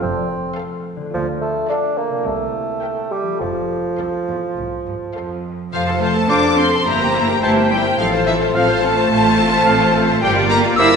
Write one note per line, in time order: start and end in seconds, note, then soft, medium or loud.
0.00 0.46 F1 medium
0.00 0.46 F2 medium
0.00 2.20 F3 soft
0.00 1.00 A3 soft
0.00 1.12 C4 soft
0.00 0.56 C4 medium
0.00 1.09 F4 soft
0.55 0.99 A4 soft
0.55 0.98 C5 soft
0.55 1.00 F5 soft
0.96 2.20 D3 soft
1.01 2.22 A3 soft
1.05 2.24 D4 soft
1.10 1.58 D2 medium
1.10 2.27 F4 soft
1.14 1.59 D2 medium
1.14 1.27 F3 medium
1.41 1.69 A3 medium
1.69 1.99 D4 medium
1.69 2.12 A4 soft
1.69 2.11 D5 medium
1.69 2.12 F5 soft
1.98 2.28 A#3 medium
2.09 3.34 C3 soft
2.13 3.37 A#3 soft
2.18 3.39 E4 soft
2.22 2.71 C2 medium
2.22 3.13 A3 medium
2.22 3.41 G4 soft
2.82 3.25 A#4 soft
2.82 3.25 E5 soft
2.82 3.26 G5 soft
3.12 3.40 G3 medium
3.23 5.72 F3 soft
3.27 6.81 A3 soft
3.32 6.00 F4 soft
3.37 6.14 A4 soft
3.41 3.87 F1 medium
3.41 3.87 F2 medium
3.41 5.40 F3 medium
3.98 4.07 C2 soft
3.98 4.42 A4 soft
3.98 4.43 C5 soft
3.98 4.42 F5 soft
4.28 4.36 E2 soft
4.57 5.03 C2 medium
4.57 4.65 A2 soft
4.86 4.94 G2 soft
5.15 5.72 F2 soft
5.15 5.58 A4 soft
5.15 5.58 C5 soft
5.15 5.58 F5 soft
5.72 6.22 F1 medium
5.72 5.99 F3 medium
5.72 6.88 F3 medium
5.72 5.86 F4 soft
5.72 5.86 A4 medium
5.72 6.82 A4 medium
5.72 5.86 C5 medium
5.72 10.19 C5 medium
5.72 5.86 F5 medium
5.72 5.99 F5 medium
5.72 5.82 F5 medium
5.87 7.14 C4 soft
5.87 6.01 A4 soft
5.87 6.02 C5 soft
5.87 6.02 A5 soft
6.01 6.29 A3 medium
6.01 6.88 F4 soft
6.01 6.16 F4 soft
6.01 6.15 A4 medium
6.01 6.15 C5 soft
6.01 6.15 F5 soft
6.01 6.29 A5 medium
6.01 6.08 A5 medium
6.15 6.29 A4 soft
6.15 6.88 A4 soft
6.15 6.29 C5 soft
6.15 6.29 A5 soft
6.28 6.79 F1 medium
6.28 6.46 F3 soft
6.28 6.57 D4 medium
6.28 6.42 F4 soft
6.28 6.42 A4 medium
6.28 6.44 C5 soft
6.28 6.42 C5 soft
6.28 7.42 C5 soft
6.28 6.43 F5 medium
6.28 6.46 A5 soft
6.28 6.57 D6 medium
6.28 6.36 D6 medium
6.42 6.57 A4 soft
6.42 6.59 C5 soft
6.42 6.58 A5 soft
6.56 6.86 C4 medium
6.56 6.71 F4 soft
6.56 6.72 A4 soft
6.56 6.71 C5 soft
6.56 6.73 F5 soft
6.56 6.88 A5 medium
6.56 6.84 C6 medium
6.56 6.86 C6 medium
6.69 6.85 A4 soft
6.74 6.87 C5 soft
6.74 6.87 A5 soft
6.84 7.35 G1 medium
6.84 8.01 G2 medium
6.84 7.41 A#3 medium
6.84 6.98 E4 medium
6.84 7.96 G4 medium
6.84 7.00 A#4 medium
6.84 6.98 C5 soft
6.84 7.00 E5 soft
6.84 7.41 A#5 medium
6.84 7.42 A#5 medium
7.00 8.01 G3 soft
7.00 7.14 G4 soft
7.00 7.14 A#4 soft
7.00 7.15 C5 soft
7.00 7.15 G5 soft
7.13 8.26 C4 soft
7.13 7.28 E4 soft
7.13 7.29 A#4 soft
7.13 7.28 C5 soft
7.13 7.29 E5 medium
7.28 7.56 E4 soft
7.28 7.42 G4 soft
7.28 7.42 A#4 soft
7.28 7.43 C5 soft
7.28 7.43 G5 medium
7.41 7.92 G1 medium
7.41 7.59 E3 soft
7.41 7.69 A3 medium
7.41 7.55 E4 soft
7.41 7.56 A#4 soft
7.41 7.55 C5 soft
7.41 7.58 C5 soft
7.41 8.55 C5 soft
7.41 7.57 E5 soft
7.41 7.59 G5 soft
7.41 7.70 A5 medium
7.41 7.52 A5 medium
7.56 8.01 E4 soft
7.56 7.71 G4 soft
7.56 7.70 A#4 soft
7.56 7.72 C5 soft
7.56 7.72 G5 soft
7.70 7.78 G3 medium
7.70 7.84 E4 soft
7.70 7.84 C5 soft
7.70 8.01 E5 soft
7.70 7.86 E5 soft
7.70 7.77 G5 medium
7.70 7.99 G5 medium
7.74 7.86 A#4 soft
7.85 7.99 G4 soft
7.85 7.99 A#4 soft
7.85 8.00 C5 medium
7.85 8.00 G5 soft
7.85 8.96 C6 soft
7.98 8.48 A1 medium
7.98 10.25 A2 medium
7.98 8.06 F3 medium
7.98 8.12 C4 medium
7.98 10.96 F4 medium
7.98 8.12 A4 medium
7.98 8.13 A4 medium
7.98 8.25 F5 medium
7.98 8.07 F5 medium
7.98 8.13 F5 medium
8.13 9.67 A3 soft
8.13 8.27 F4 soft
8.13 8.27 C5 soft
8.13 8.27 A5 soft
8.26 8.36 E3 medium
8.26 8.41 C4 medium
8.26 9.52 C4 soft
8.26 8.41 A4 medium
8.26 8.32 E5 medium
8.26 8.36 E5 medium
8.26 8.41 F5 medium
8.41 8.68 F4 medium
8.41 8.55 F4 medium
8.41 8.55 C5 soft
8.41 8.55 A5 soft
8.54 9.04 A1 medium
8.54 8.63 F3 medium
8.54 8.72 F3 medium
8.54 8.68 C4 soft
8.54 8.68 A4 soft
8.54 8.68 A4 medium
8.54 8.71 C5 medium
8.54 9.25 C5 medium
8.54 8.60 F5 medium
8.54 8.71 F5 medium
8.54 8.82 F5 medium
8.54 8.68 F5 medium
8.68 8.82 F4 soft
8.68 9.39 F4 medium
8.68 8.83 C5 soft
8.68 8.84 C5 medium
8.68 8.84 A5 medium
8.81 10.20 A3 medium
8.81 8.96 C4 medium
8.81 8.96 A4 medium
8.81 8.98 A4 soft
8.81 9.10 F5 medium
8.81 8.98 F5 medium
8.81 10.23 A5 medium
8.96 9.10 F4 soft
8.96 9.10 C5 medium
8.96 9.11 C5 soft
8.96 9.11 A5 soft
8.96 10.25 C6 medium
9.11 9.60 A1 medium
9.11 9.23 C4 medium
9.11 9.24 A4 medium
9.11 10.96 F5 medium
9.11 9.24 F5 medium
9.23 9.38 F4 medium
9.23 9.38 C5 medium
9.23 10.25 C5 soft
9.23 9.40 C5 medium
9.23 9.40 A5 soft
9.36 9.51 C4 medium
9.36 10.64 F4 soft
9.36 9.51 A4 soft
9.36 9.53 A4 medium
9.36 9.52 F5 medium
9.51 9.80 C4 soft
9.51 9.66 F4 medium
9.51 9.66 C5 medium
9.51 9.67 C5 medium
9.51 9.67 A5 medium
9.65 10.16 A1 medium
9.65 9.84 F3 medium
9.65 9.94 A3 soft
9.65 9.79 C4 medium
9.65 9.79 A4 medium
9.65 9.80 A4 medium
9.65 9.82 C5 medium
9.65 9.82 F5 medium
9.65 9.80 F5 medium
9.80 10.08 C4 soft
9.80 9.94 F4 medium
9.80 9.94 C5 soft
9.80 9.94 C5 medium
9.80 9.95 A5 medium
9.94 10.25 A3 soft
9.94 10.08 C4 medium
9.94 10.08 A4 medium
9.94 10.08 A4 soft
9.94 10.09 F5 soft
10.07 10.25 C4 medium
10.07 10.22 F4 medium
10.07 10.22 C5 medium
10.07 10.23 C5 medium
10.07 10.23 A5 medium
10.21 10.72 G1 medium
10.21 10.96 G2 medium
10.21 10.50 G3 medium
10.21 10.33 G4 medium
10.21 10.35 A#4 medium
10.21 10.96 A#4 medium
10.21 10.35 D5 medium
10.21 10.35 F5 medium
10.21 10.48 G5 medium
10.21 10.31 G5 medium
10.34 10.96 D3 medium
10.34 10.49 F4 medium
10.34 10.49 G4 medium
10.34 10.50 D5 medium
10.34 10.49 F5 medium
10.48 10.77 A#3 medium
10.48 10.96 A#3 medium
10.48 10.62 G4 medium
10.48 10.64 A#4 medium
10.48 10.62 D5 medium
10.48 10.63 F5 medium
10.48 10.55 A#5 medium
10.48 10.58 A#5 medium
10.63 10.78 F4 medium
10.63 10.96 F4 medium
10.63 10.77 G4 medium
10.63 10.77 D5 medium
10.63 10.77 F5 medium
10.76 10.96 G1 medium
10.76 10.95 F3 medium
10.76 10.86 E4 medium
10.76 10.90 G4 medium
10.76 10.91 A#4 medium
10.76 10.95 A#4 medium
10.76 10.94 D5 medium
10.76 10.91 D5 medium
10.76 10.96 D5 medium
10.76 10.91 F5 medium
10.76 10.83 E6 medium
10.76 10.96 E6 medium
10.91 10.96 F4 medium
10.91 10.96 G4 medium
10.91 10.96 A#4 medium
10.91 10.96 D5 medium
10.91 10.96 F5 medium